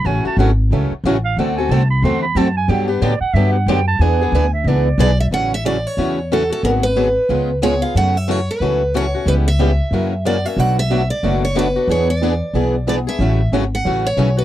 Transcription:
X:1
M:4/4
L:1/8
Q:"Swing" 1/4=182
K:A
V:1 name="Clarinet"
g a f z4 =f | f g a b =c' b a g | =g B d f e f g a | g3 e d3 z |
z8 | z8 | z8 | z8 |
z8 | z8 | z8 |]
V:2 name="Steel-string acoustic guitar"
z8 | z8 | z8 | z6 d e |
f e d c3 A A | _B =B4- B c ^e | f e c B3 c2 | B e4- e d e |
f e2 d2 c B2 | c d4- d d e- | e2 z f2 c2 B |]
V:3 name="Steel-string acoustic guitar"
[F,CEA] z [F,CEA] z [F,CEA] z [F,CEA] z | [D,A,=CFA] z [D,A,CFA] z [D,A,CFA] z [D,A,CFA] z | [D,F,B,D=G] z [D,F,B,DG] z [D,F,B,DG] z [D,F,B,DG] z | [E,B,DGB] z [E,B,DGB] z [E,B,DGB] z [E,B,DGB] z |
[C,F,CE] z [C,F,CE] z [C,F,CE] z [C,F,CE] z | [D,F,B,FG] z [D,F,B,FG] z [C,G,B,^EG] z [C,G,B,EG] z | [F,CEA] z [F,CEA] z [F,CEA] z [F,CEA] z | [C,=G,B,EB] z [C,G,B,EB] z [F,CE^A] z [F,CEA] z |
[B,,F,A,DFB] z [B,,F,A,DFB] z [B,,F,A,DFB] z [B,,F,A,DFB] z | [E,B,DGB] z [E,B,DGB] z [E,B,DGB] z [E,B,DGB] z | [C,F,CE] z [C,F,CE] z [C,F,CE] z [C,F,CE] z |]
V:4 name="Steel-string acoustic guitar"
[C,E,A,CF] [A,CF] [C,E,A,CF] z [C,E,A,CF] z [C,E,A,CF] z | [D,A,=CFA] [CFA] [D,A,CFA] z [D,A,CFA] z [D,A,CFA] z | [D,F,B,D=G] [B,DG] [D,F,B,DG] z [D,F,B,DG] z [D,F,B,DG] z | [E,B,DG] [B,DG] [E,B,DG] z [E,B,DG] z [E,B,DG] z |
[C,E,A,CF] z [C,E,A,CF] z [C,E,A,CF] z [C,E,A,CF] [A,CF] | [D,F,B,FG] z [D,F,B,FG] z [C,G,B,^EG] z [C,G,B,EG] [B,EG] | [C,E,A,CF] z [C,E,A,CF] z [C,E,A,CF] z [C,E,A,CF] [A,CF] | [C,E,B,C=G] z [C,E,B,CG] z [C,E,^A,CF] z [C,E,A,CF] [A,CF] |
[B,,F,A,DF] z [B,,F,A,DF] z [B,,F,A,DF] z [B,,F,A,DF] [A,DF] | [E,B,DG] z [E,B,DG] z [E,B,DG] z [E,B,DG] [B,DG] | [C,E,A,CF] z [C,E,A,CF] z [C,E,A,CF] z [C,E,A,CF] [A,CF] |]
V:5 name="Upright bass" clef=bass
A,,, z G,,,2 C,, z A,,,2 | D,,2 =C,,2 E,,2 F,,2 | =G,,2 A,, z G,,2 F,,2 | E,,2 D,,2 C,,2 B,,,2 |
A,,,4 E,,4 | G,,,4 C,,4 | F,,4 C,,4 | C,,4 F,,4 |
B,,,4 F,,,4 | E,,4 B,,,4 | A,,,2 G,,,2 A,,,2 B,,,2 |]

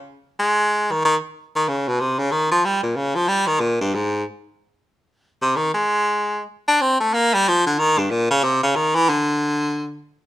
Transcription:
X:1
M:4/4
L:1/8
Q:"Swing" 1/4=187
K:Ab
V:1 name="Baritone saxophone" clef=bass
z2 A,3 E, E, z | z E, D, _C, =C, D, E, F, | G, B,, D, F, G, E, B,, G,, | A,,2 z6 |
z C, E, A,4- A, | z =D C =A, B, G, F, =D, | E, G,, B,, D, C, D, E, _F, | =D,6 z2 |]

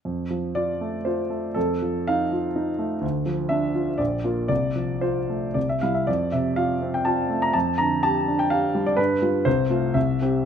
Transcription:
X:1
M:3/4
L:1/16
Q:1/4=122
K:F
V:1 name="Grand piano"
z4 d4 c4 | A4 f8 | z4 e4 d4 | d4 c4 d e f e |
d2 e2 f3 g a3 b | a2 b2 a3 g f3 d | =B4 c4 e4 |]
V:2 name="Grand piano"
F,,2 F,2 F2 A,2 F2 A,2 | F,,2 F,2 _E2 F2 E2 A,2 | D,,2 F,2 D2 F2 B,,,2 [B,F]2 | C,,2 F,2 F2 A,2 C,,2 [G,E]2 |
F,,2 C,2 F2 C2 F2 A,2 | F,,2 D,2 G2 D2 G2 G,2 | G,,2 [G,F]2 C,,2 [A,F]2 C,,2 [CG]2 |]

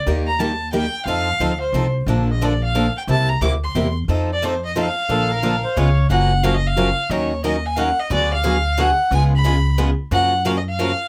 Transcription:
X:1
M:3/4
L:1/16
Q:"Swing" 1/4=179
K:Bb
V:1 name="Violin"
z2 b2 a4 g4 | f6 c4 z2 | z2 e2 d2 f4 g2 | a2 b2 d'2 c'4 z2 |
z2 d2 c2 e2 f4- | f8- f2 z2 | [K:F#] f4 (3e2 d2 e2- e4 | c4 d2 g3/2 e/2 f2 d2 |
=d2 e6 f4 | g2 b6 z4 | f4 (3e2 d2 e2- e4 |]
V:2 name="Accordion"
z12 | z12 | z12 | z12 |
z12 | A2 B4 c2 _d4 | [K:F#] z12 | z12 |
z12 | z12 | z12 |]
V:3 name="Steel-string acoustic guitar"
[E,G,B,EG]2 z2 [E,G,B,EG] z3 [E,G,B,EG] z3 | [F,CEA]2 z2 [F,CEA] z3 [F,CEA] z3 | [D,F,B,DA]2 z2 [D,F,B,DA] z3 [D,F,B,DA] z3 | [C,G,B,=EG]2 z2 [C,G,B,EG] z3 [C,G,B,EG] z3 |
[F,CEA]2 z2 [F,CEA] z3 [F,CEA] z3 | [D,F,B,DA]2 z2 [D,F,B,DA] z3 [_D,_A,_CF_A] z3 | [K:F#] [F,CEA]2 z2 [F,CEA] z3 [F,CEA] z3 | [D,F,CDA]2 z2 [D,F,CDA] z3 [D,F,CDA] z3 |
[=D,F,B,FG]2 z2 [D,F,B,FG] z3 [D,F,B,FG] z3 | [C,G,B,EG]2 z2 [C,G,B,EG] z3 [C,G,B,EG] z3 | [F,CEA]2 z2 [F,CEA] z3 [F,CEA] z3 |]
V:4 name="Steel-string acoustic guitar"
[E,G,B,EG]2 z2 [E,G,B,EG] z3 [E,G,B,EG] z3 | [F,CEA]2 z2 [F,CEA] z3 [F,CEA] z3 | [D,F,B,DA]2 z2 [D,F,B,DA] z3 [D,F,B,DA] z3 | [C,G,B,=EG]2 z2 [C,G,B,EG] z3 [C,G,B,EG] z3 |
[F,CEA]2 z2 [F,CEA] z3 [F,CEA] z3 | [D,F,B,DA]2 z2 [D,F,B,DA] z3 [_D,_A,_CF_A] z3 | [K:F#] [C,E,A,CF]2 z2 [C,E,A,CF] z3 [C,E,A,CF] z3 | [D,F,CDA]2 z2 [D,F,CDA] z3 [D,F,CDA] z3 |
[=D,F,B,FG]2 z2 [D,F,B,FG] z3 [D,F,B,FG] z3 | [C,G,B,EG]2 z2 [C,G,B,EG] z3 [C,G,B,EG] z3 | [C,E,A,CF]2 z2 [C,E,A,CF] z3 [C,E,A,CF] z3 |]
V:5 name="Upright bass" clef=bass
E,,12 | F,,4 D,,4 C,,4 | B,,,12 | C,,4 D,,4 =E,,4 |
F,,12 | B,,,8 _D,,4 | [K:F#] F,,,12 | D,,12 |
=D,,12 | C,,12 | F,,12 |]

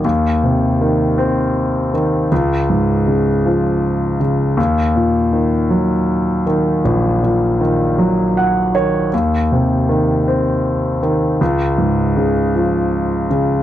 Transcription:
X:1
M:6/8
L:1/8
Q:3/8=53
K:Db
V:1 name="Grand piano"
z6 | z6 | z6 | z4 g d |
z6 | z6 |]
V:2 name="Grand piano" clef=bass
E,, C, E, C2 E, | D,, A,, D, F,2 D, | E,, B,, E, G,2 E, | B,,, B,, E, G,2 E, |
E,, C, E, C2 E, | D,, A,, D, F,2 D, |]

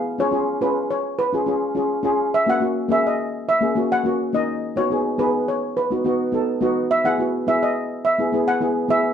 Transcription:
X:1
M:4/4
L:1/16
Q:1/4=105
K:E
V:1 name="Steel pan"
=f c3 B2 c2 B6 z2 | e f3 e d3 e3 f3 d2- | d c3 B2 c2 B6 z2 | e f3 e d3 e3 f3 e2 |]
V:2 name="Steel pan"
z [C^EG] [CEG] z [CEG]3 z2 [CEG] [CEG] z [CEG] z [CEG]2 | z [^A,CF] [A,CF] z [A,CG]3 z2 [A,CG] [A,CF] z [A,CF] z [A,CD]2 | z [B,DF] [B,DG] z [B,DG]3 z2 [B,DF] [B,DF] z [B,DA] z [B,DF]2 | z [B,EG] [B,EF] z [B,EG]3 z2 [B,EG] [B,EG] z [B,EG] z [B,EG]2 |]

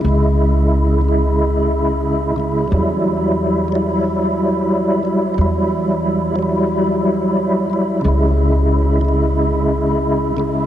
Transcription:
X:1
M:4/4
L:1/8
Q:"Swing 16ths" 1/4=90
K:C#m
V:1 name="Tonewheel organ" clef=bass
[C,G,E]3 [C,G,E]4 [C,G,E] | [F,=G,E]3 [F,G,E]4 [F,G,E] | [F,=G,E]3 [F,G,E]4 [F,G,E] | [C,G,E]3 [C,G,E]4 [C,G,E] |]
V:2 name="Upright bass" clef=bass
C,,8 | E,,8 | E,,8 | C,,8 |]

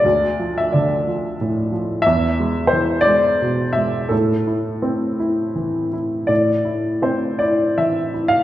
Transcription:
X:1
M:3/4
L:1/16
Q:1/4=86
K:Am
V:1 name="Upright piano"
d3 e d4 z4 | e4 c2 d4 e2 | A8- A2 z2 | d4 c2 d2 e3 f |]
V:2 name="Upright piano" clef=bass
D,,2 F,2 D,2 F,2 A,,2 F,2 | E,,2 ^G,2 E,2 G,2 B,,2 G,2 | A,,2 E2 C2 E2 E,2 E2 | A,,2 E2 C2 E2 E,2 E2 |]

